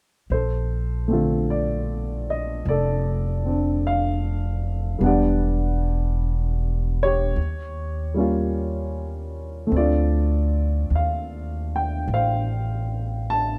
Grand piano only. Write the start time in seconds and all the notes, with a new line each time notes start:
0.32 A4 C5
1.08 D3 A3 C4
1.13 F4
1.50 D5
2.30 D#5
2.69 A4 D5
3.45 C4 D4
3.87 F5
4.99 G3 B3 D4
5.04 G4 D5 F#5
7.03 G4 C#5
8.14 G3 A#3 C#4
8.20 F4
9.67 A3 C4
9.74 D4 F4 D5
10.95 F5
11.76 G5
12.14 C5 F5
13.30 A5